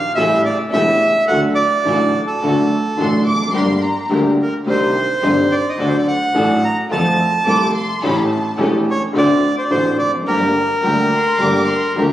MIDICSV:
0, 0, Header, 1, 6, 480
1, 0, Start_track
1, 0, Key_signature, -2, "minor"
1, 0, Tempo, 562324
1, 1097, Time_signature, 4, 2, 24, 8
1, 10351, End_track
2, 0, Start_track
2, 0, Title_t, "Violin section"
2, 0, Program_c, 0, 48
2, 2543, Note_on_c, 0, 84, 67
2, 2767, Note_off_c, 0, 84, 0
2, 2791, Note_on_c, 0, 86, 81
2, 3012, Note_off_c, 0, 86, 0
2, 3016, Note_on_c, 0, 84, 72
2, 3243, Note_off_c, 0, 84, 0
2, 3267, Note_on_c, 0, 82, 63
2, 3626, Note_off_c, 0, 82, 0
2, 6370, Note_on_c, 0, 86, 82
2, 6595, Note_off_c, 0, 86, 0
2, 6623, Note_on_c, 0, 84, 74
2, 6841, Note_off_c, 0, 84, 0
2, 6859, Note_on_c, 0, 83, 74
2, 6968, Note_off_c, 0, 83, 0
2, 6980, Note_on_c, 0, 81, 70
2, 7456, Note_off_c, 0, 81, 0
2, 9248, Note_on_c, 0, 82, 65
2, 9472, Note_off_c, 0, 82, 0
2, 9495, Note_on_c, 0, 84, 78
2, 9717, Note_off_c, 0, 84, 0
2, 9722, Note_on_c, 0, 86, 72
2, 9961, Note_on_c, 0, 84, 68
2, 9968, Note_off_c, 0, 86, 0
2, 10136, Note_off_c, 0, 84, 0
2, 10146, Note_on_c, 0, 84, 42
2, 10208, Note_on_c, 0, 82, 59
2, 10210, Note_off_c, 0, 84, 0
2, 10351, Note_off_c, 0, 82, 0
2, 10351, End_track
3, 0, Start_track
3, 0, Title_t, "Bandoneon"
3, 0, Program_c, 1, 23
3, 0, Note_on_c, 1, 77, 83
3, 107, Note_off_c, 1, 77, 0
3, 130, Note_on_c, 1, 76, 79
3, 356, Note_off_c, 1, 76, 0
3, 387, Note_on_c, 1, 74, 74
3, 493, Note_off_c, 1, 74, 0
3, 622, Note_on_c, 1, 76, 81
3, 1066, Note_off_c, 1, 76, 0
3, 1091, Note_on_c, 1, 78, 72
3, 1201, Note_off_c, 1, 78, 0
3, 1322, Note_on_c, 1, 74, 80
3, 1896, Note_off_c, 1, 74, 0
3, 1939, Note_on_c, 1, 69, 54
3, 2628, Note_off_c, 1, 69, 0
3, 3776, Note_on_c, 1, 70, 55
3, 3877, Note_off_c, 1, 70, 0
3, 4010, Note_on_c, 1, 72, 69
3, 4711, Note_on_c, 1, 74, 80
3, 4736, Note_off_c, 1, 72, 0
3, 4858, Note_on_c, 1, 75, 54
3, 4862, Note_off_c, 1, 74, 0
3, 4941, Note_off_c, 1, 75, 0
3, 4943, Note_on_c, 1, 74, 55
3, 5019, Note_on_c, 1, 72, 61
3, 5023, Note_off_c, 1, 74, 0
3, 5099, Note_off_c, 1, 72, 0
3, 5103, Note_on_c, 1, 74, 56
3, 5180, Note_off_c, 1, 74, 0
3, 5187, Note_on_c, 1, 78, 76
3, 5674, Note_on_c, 1, 82, 73
3, 5675, Note_off_c, 1, 78, 0
3, 5778, Note_off_c, 1, 82, 0
3, 5906, Note_on_c, 1, 81, 82
3, 6586, Note_off_c, 1, 81, 0
3, 7605, Note_on_c, 1, 73, 73
3, 7705, Note_off_c, 1, 73, 0
3, 7836, Note_on_c, 1, 74, 91
3, 8158, Note_off_c, 1, 74, 0
3, 8180, Note_on_c, 1, 72, 64
3, 8230, Note_on_c, 1, 74, 51
3, 8231, Note_off_c, 1, 72, 0
3, 8286, Note_on_c, 1, 72, 71
3, 8289, Note_off_c, 1, 74, 0
3, 8511, Note_off_c, 1, 72, 0
3, 8526, Note_on_c, 1, 74, 81
3, 8635, Note_off_c, 1, 74, 0
3, 8770, Note_on_c, 1, 70, 68
3, 10180, Note_off_c, 1, 70, 0
3, 10351, End_track
4, 0, Start_track
4, 0, Title_t, "String section"
4, 0, Program_c, 2, 48
4, 138, Note_on_c, 2, 61, 57
4, 143, Note_on_c, 2, 69, 70
4, 144, Note_on_c, 2, 67, 55
4, 339, Note_off_c, 2, 61, 0
4, 342, Note_off_c, 2, 67, 0
4, 342, Note_off_c, 2, 69, 0
4, 617, Note_on_c, 2, 67, 57
4, 618, Note_on_c, 2, 61, 59
4, 620, Note_on_c, 2, 69, 69
4, 818, Note_off_c, 2, 67, 0
4, 819, Note_off_c, 2, 61, 0
4, 820, Note_off_c, 2, 69, 0
4, 1101, Note_on_c, 2, 62, 60
4, 1102, Note_on_c, 2, 66, 58
4, 1103, Note_on_c, 2, 69, 63
4, 1301, Note_off_c, 2, 62, 0
4, 1301, Note_off_c, 2, 66, 0
4, 1302, Note_off_c, 2, 69, 0
4, 1581, Note_on_c, 2, 62, 60
4, 1585, Note_on_c, 2, 69, 68
4, 1586, Note_on_c, 2, 66, 56
4, 1781, Note_off_c, 2, 62, 0
4, 1783, Note_off_c, 2, 69, 0
4, 1784, Note_off_c, 2, 66, 0
4, 2062, Note_on_c, 2, 62, 57
4, 2064, Note_on_c, 2, 66, 51
4, 2065, Note_on_c, 2, 69, 65
4, 2263, Note_off_c, 2, 62, 0
4, 2264, Note_off_c, 2, 66, 0
4, 2264, Note_off_c, 2, 69, 0
4, 2542, Note_on_c, 2, 62, 56
4, 2544, Note_on_c, 2, 66, 49
4, 2547, Note_on_c, 2, 69, 60
4, 2745, Note_off_c, 2, 62, 0
4, 2746, Note_off_c, 2, 66, 0
4, 2747, Note_off_c, 2, 69, 0
4, 3018, Note_on_c, 2, 62, 62
4, 3023, Note_on_c, 2, 67, 58
4, 3023, Note_on_c, 2, 70, 64
4, 3223, Note_off_c, 2, 62, 0
4, 3226, Note_off_c, 2, 67, 0
4, 3226, Note_off_c, 2, 70, 0
4, 3500, Note_on_c, 2, 62, 61
4, 3504, Note_on_c, 2, 67, 52
4, 3504, Note_on_c, 2, 70, 64
4, 3704, Note_off_c, 2, 62, 0
4, 3706, Note_off_c, 2, 67, 0
4, 3706, Note_off_c, 2, 70, 0
4, 3984, Note_on_c, 2, 62, 57
4, 3984, Note_on_c, 2, 63, 57
4, 3985, Note_on_c, 2, 72, 70
4, 4185, Note_off_c, 2, 62, 0
4, 4185, Note_off_c, 2, 63, 0
4, 4186, Note_off_c, 2, 72, 0
4, 4461, Note_on_c, 2, 62, 64
4, 4462, Note_on_c, 2, 63, 56
4, 4465, Note_on_c, 2, 72, 72
4, 4662, Note_off_c, 2, 62, 0
4, 4663, Note_off_c, 2, 63, 0
4, 4664, Note_off_c, 2, 72, 0
4, 4937, Note_on_c, 2, 62, 63
4, 4938, Note_on_c, 2, 69, 72
4, 4939, Note_on_c, 2, 66, 56
4, 5140, Note_off_c, 2, 62, 0
4, 5140, Note_off_c, 2, 69, 0
4, 5141, Note_off_c, 2, 66, 0
4, 5419, Note_on_c, 2, 62, 63
4, 5419, Note_on_c, 2, 66, 57
4, 5422, Note_on_c, 2, 69, 74
4, 5619, Note_off_c, 2, 62, 0
4, 5619, Note_off_c, 2, 66, 0
4, 5620, Note_off_c, 2, 69, 0
4, 5895, Note_on_c, 2, 60, 60
4, 5899, Note_on_c, 2, 65, 54
4, 5899, Note_on_c, 2, 69, 67
4, 6097, Note_off_c, 2, 60, 0
4, 6099, Note_off_c, 2, 65, 0
4, 6099, Note_off_c, 2, 69, 0
4, 6373, Note_on_c, 2, 60, 57
4, 6377, Note_on_c, 2, 69, 68
4, 6378, Note_on_c, 2, 65, 59
4, 6575, Note_off_c, 2, 60, 0
4, 6577, Note_off_c, 2, 69, 0
4, 6578, Note_off_c, 2, 65, 0
4, 6853, Note_on_c, 2, 61, 66
4, 6853, Note_on_c, 2, 67, 61
4, 6855, Note_on_c, 2, 69, 78
4, 7054, Note_off_c, 2, 61, 0
4, 7054, Note_off_c, 2, 67, 0
4, 7055, Note_off_c, 2, 69, 0
4, 7334, Note_on_c, 2, 61, 70
4, 7337, Note_on_c, 2, 67, 60
4, 7340, Note_on_c, 2, 69, 67
4, 7534, Note_off_c, 2, 61, 0
4, 7536, Note_off_c, 2, 67, 0
4, 7537, Note_off_c, 2, 69, 0
4, 7812, Note_on_c, 2, 62, 67
4, 7814, Note_on_c, 2, 66, 52
4, 7814, Note_on_c, 2, 72, 76
4, 8012, Note_off_c, 2, 62, 0
4, 8013, Note_off_c, 2, 66, 0
4, 8013, Note_off_c, 2, 72, 0
4, 8283, Note_on_c, 2, 62, 60
4, 8285, Note_on_c, 2, 66, 57
4, 8288, Note_on_c, 2, 72, 70
4, 8487, Note_off_c, 2, 62, 0
4, 8489, Note_off_c, 2, 66, 0
4, 8490, Note_off_c, 2, 72, 0
4, 8765, Note_on_c, 2, 62, 68
4, 8766, Note_on_c, 2, 67, 62
4, 8768, Note_on_c, 2, 70, 77
4, 8968, Note_off_c, 2, 62, 0
4, 8969, Note_off_c, 2, 67, 0
4, 8970, Note_off_c, 2, 70, 0
4, 9236, Note_on_c, 2, 62, 59
4, 9239, Note_on_c, 2, 67, 55
4, 9242, Note_on_c, 2, 70, 72
4, 9445, Note_off_c, 2, 62, 0
4, 9446, Note_off_c, 2, 67, 0
4, 9447, Note_off_c, 2, 70, 0
4, 9721, Note_on_c, 2, 62, 57
4, 9722, Note_on_c, 2, 67, 58
4, 9725, Note_on_c, 2, 70, 69
4, 9929, Note_off_c, 2, 62, 0
4, 9929, Note_off_c, 2, 67, 0
4, 9930, Note_off_c, 2, 70, 0
4, 10209, Note_on_c, 2, 62, 65
4, 10212, Note_on_c, 2, 67, 56
4, 10212, Note_on_c, 2, 70, 67
4, 10351, Note_off_c, 2, 62, 0
4, 10351, Note_off_c, 2, 67, 0
4, 10351, Note_off_c, 2, 70, 0
4, 10351, End_track
5, 0, Start_track
5, 0, Title_t, "Upright piano"
5, 0, Program_c, 3, 0
5, 145, Note_on_c, 3, 57, 58
5, 146, Note_on_c, 3, 49, 62
5, 147, Note_on_c, 3, 45, 74
5, 147, Note_on_c, 3, 55, 61
5, 150, Note_on_c, 3, 64, 74
5, 152, Note_on_c, 3, 33, 73
5, 343, Note_off_c, 3, 49, 0
5, 343, Note_off_c, 3, 57, 0
5, 344, Note_off_c, 3, 45, 0
5, 344, Note_off_c, 3, 55, 0
5, 345, Note_off_c, 3, 64, 0
5, 347, Note_off_c, 3, 33, 0
5, 621, Note_on_c, 3, 57, 48
5, 622, Note_on_c, 3, 55, 44
5, 623, Note_on_c, 3, 40, 69
5, 623, Note_on_c, 3, 49, 52
5, 627, Note_on_c, 3, 64, 63
5, 630, Note_on_c, 3, 28, 63
5, 821, Note_off_c, 3, 49, 0
5, 821, Note_off_c, 3, 55, 0
5, 821, Note_off_c, 3, 57, 0
5, 822, Note_off_c, 3, 40, 0
5, 823, Note_off_c, 3, 64, 0
5, 825, Note_off_c, 3, 28, 0
5, 1100, Note_on_c, 3, 50, 68
5, 1102, Note_on_c, 3, 38, 65
5, 1102, Note_on_c, 3, 54, 50
5, 1105, Note_on_c, 3, 57, 53
5, 1105, Note_on_c, 3, 66, 64
5, 1301, Note_off_c, 3, 38, 0
5, 1301, Note_off_c, 3, 54, 0
5, 1303, Note_off_c, 3, 50, 0
5, 1303, Note_off_c, 3, 57, 0
5, 1303, Note_off_c, 3, 66, 0
5, 1574, Note_on_c, 3, 50, 62
5, 1579, Note_on_c, 3, 57, 54
5, 1580, Note_on_c, 3, 33, 69
5, 1581, Note_on_c, 3, 45, 75
5, 1585, Note_on_c, 3, 54, 58
5, 1587, Note_on_c, 3, 66, 63
5, 1778, Note_off_c, 3, 50, 0
5, 1780, Note_off_c, 3, 57, 0
5, 1781, Note_off_c, 3, 33, 0
5, 1781, Note_off_c, 3, 45, 0
5, 1783, Note_off_c, 3, 54, 0
5, 1784, Note_off_c, 3, 66, 0
5, 2067, Note_on_c, 3, 38, 68
5, 2067, Note_on_c, 3, 50, 68
5, 2070, Note_on_c, 3, 54, 51
5, 2071, Note_on_c, 3, 66, 65
5, 2076, Note_on_c, 3, 57, 54
5, 2265, Note_off_c, 3, 38, 0
5, 2266, Note_off_c, 3, 50, 0
5, 2267, Note_off_c, 3, 54, 0
5, 2267, Note_off_c, 3, 66, 0
5, 2270, Note_off_c, 3, 57, 0
5, 2540, Note_on_c, 3, 33, 55
5, 2542, Note_on_c, 3, 50, 53
5, 2543, Note_on_c, 3, 54, 45
5, 2544, Note_on_c, 3, 45, 59
5, 2544, Note_on_c, 3, 66, 57
5, 2545, Note_on_c, 3, 57, 46
5, 2743, Note_off_c, 3, 33, 0
5, 2744, Note_off_c, 3, 50, 0
5, 2745, Note_off_c, 3, 54, 0
5, 2746, Note_off_c, 3, 45, 0
5, 2746, Note_off_c, 3, 57, 0
5, 2746, Note_off_c, 3, 66, 0
5, 2853, Note_on_c, 3, 40, 36
5, 2903, Note_on_c, 3, 41, 49
5, 2908, Note_off_c, 3, 40, 0
5, 2958, Note_on_c, 3, 42, 58
5, 2963, Note_off_c, 3, 41, 0
5, 3010, Note_on_c, 3, 55, 50
5, 3011, Note_on_c, 3, 31, 61
5, 3012, Note_on_c, 3, 50, 50
5, 3012, Note_on_c, 3, 58, 49
5, 3014, Note_on_c, 3, 67, 58
5, 3015, Note_on_c, 3, 43, 69
5, 3021, Note_off_c, 3, 42, 0
5, 3219, Note_off_c, 3, 55, 0
5, 3220, Note_off_c, 3, 31, 0
5, 3220, Note_off_c, 3, 50, 0
5, 3220, Note_off_c, 3, 58, 0
5, 3221, Note_off_c, 3, 67, 0
5, 3222, Note_off_c, 3, 43, 0
5, 3492, Note_on_c, 3, 50, 71
5, 3497, Note_on_c, 3, 38, 79
5, 3497, Note_on_c, 3, 58, 59
5, 3497, Note_on_c, 3, 67, 68
5, 3499, Note_on_c, 3, 55, 55
5, 3701, Note_off_c, 3, 50, 0
5, 3702, Note_off_c, 3, 38, 0
5, 3702, Note_off_c, 3, 58, 0
5, 3702, Note_off_c, 3, 67, 0
5, 3704, Note_off_c, 3, 55, 0
5, 3975, Note_on_c, 3, 51, 57
5, 3979, Note_on_c, 3, 60, 54
5, 3981, Note_on_c, 3, 48, 70
5, 3982, Note_on_c, 3, 62, 54
5, 3985, Note_on_c, 3, 67, 69
5, 3986, Note_on_c, 3, 36, 68
5, 4181, Note_off_c, 3, 51, 0
5, 4183, Note_off_c, 3, 60, 0
5, 4184, Note_off_c, 3, 48, 0
5, 4184, Note_off_c, 3, 62, 0
5, 4185, Note_off_c, 3, 67, 0
5, 4186, Note_off_c, 3, 36, 0
5, 4460, Note_on_c, 3, 31, 64
5, 4460, Note_on_c, 3, 51, 55
5, 4460, Note_on_c, 3, 60, 51
5, 4461, Note_on_c, 3, 43, 61
5, 4461, Note_on_c, 3, 62, 46
5, 4463, Note_on_c, 3, 67, 59
5, 4662, Note_off_c, 3, 31, 0
5, 4662, Note_off_c, 3, 43, 0
5, 4662, Note_off_c, 3, 51, 0
5, 4662, Note_off_c, 3, 60, 0
5, 4663, Note_off_c, 3, 62, 0
5, 4664, Note_off_c, 3, 67, 0
5, 4931, Note_on_c, 3, 54, 54
5, 4933, Note_on_c, 3, 38, 64
5, 4934, Note_on_c, 3, 50, 68
5, 4937, Note_on_c, 3, 62, 50
5, 4940, Note_on_c, 3, 57, 50
5, 4941, Note_on_c, 3, 69, 59
5, 5136, Note_off_c, 3, 54, 0
5, 5137, Note_off_c, 3, 38, 0
5, 5138, Note_off_c, 3, 50, 0
5, 5139, Note_off_c, 3, 62, 0
5, 5141, Note_off_c, 3, 57, 0
5, 5141, Note_off_c, 3, 69, 0
5, 5410, Note_on_c, 3, 54, 62
5, 5413, Note_on_c, 3, 57, 57
5, 5415, Note_on_c, 3, 45, 77
5, 5418, Note_on_c, 3, 69, 67
5, 5419, Note_on_c, 3, 33, 76
5, 5420, Note_on_c, 3, 62, 64
5, 5615, Note_off_c, 3, 54, 0
5, 5616, Note_off_c, 3, 57, 0
5, 5617, Note_off_c, 3, 45, 0
5, 5618, Note_off_c, 3, 69, 0
5, 5619, Note_off_c, 3, 33, 0
5, 5620, Note_off_c, 3, 62, 0
5, 5899, Note_on_c, 3, 57, 58
5, 5900, Note_on_c, 3, 53, 75
5, 5904, Note_on_c, 3, 41, 69
5, 5905, Note_on_c, 3, 60, 52
5, 5906, Note_on_c, 3, 69, 71
5, 6099, Note_off_c, 3, 57, 0
5, 6101, Note_off_c, 3, 41, 0
5, 6101, Note_off_c, 3, 53, 0
5, 6102, Note_off_c, 3, 60, 0
5, 6102, Note_off_c, 3, 69, 0
5, 6370, Note_on_c, 3, 53, 52
5, 6373, Note_on_c, 3, 57, 50
5, 6373, Note_on_c, 3, 60, 50
5, 6373, Note_on_c, 3, 69, 60
5, 6374, Note_on_c, 3, 36, 61
5, 6378, Note_on_c, 3, 48, 61
5, 6574, Note_off_c, 3, 53, 0
5, 6575, Note_off_c, 3, 57, 0
5, 6575, Note_off_c, 3, 60, 0
5, 6575, Note_off_c, 3, 69, 0
5, 6576, Note_off_c, 3, 36, 0
5, 6578, Note_off_c, 3, 48, 0
5, 6851, Note_on_c, 3, 52, 55
5, 6854, Note_on_c, 3, 45, 68
5, 6855, Note_on_c, 3, 57, 53
5, 6855, Note_on_c, 3, 61, 55
5, 6857, Note_on_c, 3, 33, 71
5, 6857, Note_on_c, 3, 67, 64
5, 7053, Note_off_c, 3, 52, 0
5, 7055, Note_off_c, 3, 45, 0
5, 7055, Note_off_c, 3, 57, 0
5, 7055, Note_off_c, 3, 61, 0
5, 7056, Note_off_c, 3, 33, 0
5, 7056, Note_off_c, 3, 67, 0
5, 7320, Note_on_c, 3, 57, 61
5, 7323, Note_on_c, 3, 28, 75
5, 7323, Note_on_c, 3, 52, 67
5, 7325, Note_on_c, 3, 40, 80
5, 7328, Note_on_c, 3, 61, 61
5, 7330, Note_on_c, 3, 67, 76
5, 7528, Note_off_c, 3, 57, 0
5, 7529, Note_off_c, 3, 28, 0
5, 7529, Note_off_c, 3, 52, 0
5, 7530, Note_off_c, 3, 40, 0
5, 7531, Note_off_c, 3, 61, 0
5, 7532, Note_off_c, 3, 67, 0
5, 7789, Note_on_c, 3, 50, 77
5, 7791, Note_on_c, 3, 57, 59
5, 7792, Note_on_c, 3, 60, 60
5, 7796, Note_on_c, 3, 38, 79
5, 7797, Note_on_c, 3, 66, 65
5, 8002, Note_off_c, 3, 50, 0
5, 8002, Note_off_c, 3, 57, 0
5, 8002, Note_off_c, 3, 60, 0
5, 8004, Note_off_c, 3, 38, 0
5, 8005, Note_off_c, 3, 66, 0
5, 8282, Note_on_c, 3, 57, 50
5, 8283, Note_on_c, 3, 50, 58
5, 8284, Note_on_c, 3, 33, 71
5, 8284, Note_on_c, 3, 60, 49
5, 8285, Note_on_c, 3, 45, 65
5, 8291, Note_on_c, 3, 66, 57
5, 8487, Note_off_c, 3, 50, 0
5, 8487, Note_off_c, 3, 57, 0
5, 8488, Note_off_c, 3, 33, 0
5, 8488, Note_off_c, 3, 60, 0
5, 8489, Note_off_c, 3, 45, 0
5, 8491, Note_off_c, 3, 66, 0
5, 8590, Note_on_c, 3, 40, 40
5, 8644, Note_on_c, 3, 41, 56
5, 8649, Note_off_c, 3, 40, 0
5, 8706, Note_off_c, 3, 41, 0
5, 8718, Note_on_c, 3, 42, 61
5, 8773, Note_off_c, 3, 42, 0
5, 8775, Note_on_c, 3, 50, 56
5, 8777, Note_on_c, 3, 55, 50
5, 8780, Note_on_c, 3, 43, 65
5, 8781, Note_on_c, 3, 31, 67
5, 8783, Note_on_c, 3, 67, 68
5, 8784, Note_on_c, 3, 58, 52
5, 8973, Note_off_c, 3, 50, 0
5, 8974, Note_off_c, 3, 55, 0
5, 8976, Note_off_c, 3, 43, 0
5, 8977, Note_off_c, 3, 31, 0
5, 8977, Note_off_c, 3, 67, 0
5, 8978, Note_off_c, 3, 58, 0
5, 9249, Note_on_c, 3, 50, 73
5, 9251, Note_on_c, 3, 38, 79
5, 9252, Note_on_c, 3, 55, 59
5, 9253, Note_on_c, 3, 67, 71
5, 9254, Note_on_c, 3, 58, 57
5, 9452, Note_off_c, 3, 38, 0
5, 9452, Note_off_c, 3, 50, 0
5, 9453, Note_off_c, 3, 55, 0
5, 9453, Note_off_c, 3, 67, 0
5, 9454, Note_off_c, 3, 58, 0
5, 9717, Note_on_c, 3, 31, 67
5, 9718, Note_on_c, 3, 50, 59
5, 9719, Note_on_c, 3, 67, 69
5, 9720, Note_on_c, 3, 43, 73
5, 9720, Note_on_c, 3, 55, 57
5, 9727, Note_on_c, 3, 58, 58
5, 9927, Note_off_c, 3, 31, 0
5, 9927, Note_off_c, 3, 50, 0
5, 9928, Note_off_c, 3, 43, 0
5, 9928, Note_off_c, 3, 55, 0
5, 9928, Note_off_c, 3, 67, 0
5, 9932, Note_off_c, 3, 58, 0
5, 10202, Note_on_c, 3, 38, 62
5, 10205, Note_on_c, 3, 55, 52
5, 10205, Note_on_c, 3, 58, 49
5, 10207, Note_on_c, 3, 50, 55
5, 10211, Note_on_c, 3, 67, 60
5, 10351, Note_off_c, 3, 38, 0
5, 10351, Note_off_c, 3, 50, 0
5, 10351, Note_off_c, 3, 55, 0
5, 10351, Note_off_c, 3, 58, 0
5, 10351, Note_off_c, 3, 67, 0
5, 10351, End_track
6, 0, Start_track
6, 0, Title_t, "Double bass"
6, 0, Program_c, 4, 43
6, 141, Note_on_c, 4, 33, 72
6, 341, Note_off_c, 4, 33, 0
6, 629, Note_on_c, 4, 28, 78
6, 824, Note_off_c, 4, 28, 0
6, 1106, Note_on_c, 4, 38, 71
6, 1303, Note_off_c, 4, 38, 0
6, 1583, Note_on_c, 4, 33, 75
6, 1782, Note_off_c, 4, 33, 0
6, 2072, Note_on_c, 4, 38, 75
6, 2268, Note_off_c, 4, 38, 0
6, 2550, Note_on_c, 4, 33, 74
6, 2748, Note_off_c, 4, 33, 0
6, 2791, Note_on_c, 4, 29, 43
6, 3028, Note_off_c, 4, 29, 0
6, 3034, Note_on_c, 4, 31, 70
6, 3231, Note_off_c, 4, 31, 0
6, 3507, Note_on_c, 4, 38, 72
6, 3707, Note_off_c, 4, 38, 0
6, 3990, Note_on_c, 4, 36, 71
6, 4188, Note_off_c, 4, 36, 0
6, 4469, Note_on_c, 4, 31, 82
6, 4667, Note_off_c, 4, 31, 0
6, 4950, Note_on_c, 4, 38, 66
6, 5146, Note_off_c, 4, 38, 0
6, 5421, Note_on_c, 4, 33, 76
6, 5620, Note_off_c, 4, 33, 0
6, 5901, Note_on_c, 4, 41, 76
6, 6099, Note_off_c, 4, 41, 0
6, 6378, Note_on_c, 4, 36, 79
6, 6578, Note_off_c, 4, 36, 0
6, 6856, Note_on_c, 4, 33, 75
6, 7056, Note_off_c, 4, 33, 0
6, 7335, Note_on_c, 4, 28, 75
6, 7535, Note_off_c, 4, 28, 0
6, 7815, Note_on_c, 4, 38, 81
6, 8013, Note_off_c, 4, 38, 0
6, 8290, Note_on_c, 4, 33, 81
6, 8491, Note_off_c, 4, 33, 0
6, 8532, Note_on_c, 4, 29, 49
6, 8764, Note_off_c, 4, 29, 0
6, 8769, Note_on_c, 4, 31, 74
6, 8971, Note_off_c, 4, 31, 0
6, 9247, Note_on_c, 4, 38, 72
6, 9450, Note_off_c, 4, 38, 0
6, 9732, Note_on_c, 4, 31, 68
6, 9934, Note_off_c, 4, 31, 0
6, 10219, Note_on_c, 4, 38, 82
6, 10351, Note_off_c, 4, 38, 0
6, 10351, End_track
0, 0, End_of_file